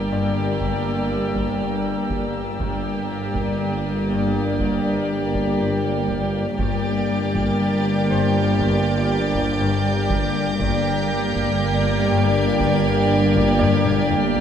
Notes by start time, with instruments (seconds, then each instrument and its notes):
Already playing: synth drone G1, double bass section G1, harp G2 G3, cello section G2, trombone section G2 G3, viola section A#3, french horn section D4 A#4, violin section G4 D5 A#5 E6
0.11 harp G2, grand piano D5
0.61 harp G2, taiko
1.11 harp G3
1.35 taiko
1.61 harp G2
2.10 harp G3, taiko
2.60 double bass section G1, synth drone G1, cello section G2, trombone section G2 G3, harp G2, viola section A#3, french horn section D4 A#4, violin section G4 D5, taiko
3.11 harp G3
3.35 taiko
3.46 violin section D#6
3.61 harp G3
4.12 harp G2
4.60 harp G2, taiko
5.11 harp G3
5.34 taiko
5.60 harp G2
6.09 harp G3, taiko
6.58 synth drone G1, double bass section G1, cello section G2, harp G2, trombone section G2 G3, viola section A#3, french horn section D4 A#4, violin section G4 D5 D6 A6, taiko
7.11 harp G3
7.35 taiko
7.58 harp G3, violin section G6
8.10 harp G2, grand piano C5
8.60 harp G2, taiko
9.11 harp G3
9.35 taiko
9.60 harp G2
10.10 harp G3, taiko
10.59 synth drone G1, double bass section G1, cello section G2, harp G2, trombone section G2 G3, viola section A#3, french horn section D4 A#4, violin section G4 D5, taiko
10.69 violin section A#6
11.12 harp G3
11.35 taiko
11.62 harp G3
12.11 harp G2
12.44 violin section G#6
12.60 harp G2, taiko
13.12 harp G3
13.35 taiko
13.59 harp G2, grand piano D5, taiko low-mid
13.85 taiko mid
14.10 harp G3, taiko low-mid
14.36 taiko low